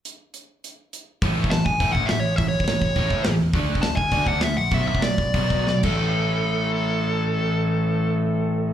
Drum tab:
CC |----------------|----------------|----------------|----------------|
HH |x---x---x---x---|o---o---o---o---|o---o---o---o---|o---o---o---o---|
SD |----------------|----o-------o---|----o-------o---|----o-------o---|
BD |----------------|o--o--o-o-o-----|o--o--o-o-o-----|o--o--o-o-o-----|

CC |--------------x-|----------------|----------------|
HH |o---o---o-------|----------------|----------------|
SD |----o-------o---|----------------|----------------|
BD |o--o--o-o-o---o-|----------------|----------------|